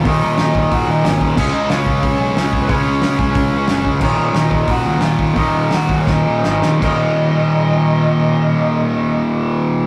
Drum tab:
CC |--------|x-------|--------|x-------|
HH |o-o-o-o-|--o-o-o-|o-o-o-o-|--o-o-o-|
SD |--o---o-|--o---o-|--o---o-|--o---o-|
BD |o--oo--o|o--oo--o|o--oo--o|o--oo--o|

CC |--------|x-------|--------|
HH |o-o-----|--------|--------|
SD |--o-o-oo|--------|--------|
BD |o--oo---|o-------|--------|